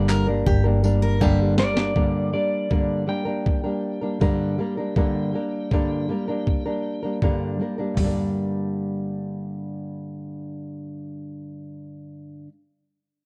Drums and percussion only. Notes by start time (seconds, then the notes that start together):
0.09 clap, tambourine
0.47 kick
0.84 tambourine
1.21 kick
1.58 snare
1.77 snare
1.96 kick
2.71 kick
3.46 kick
4.21 kick
4.96 kick
5.71 kick
6.47 kick
7.22 kick
7.97 kick, floor tom, open hi-hat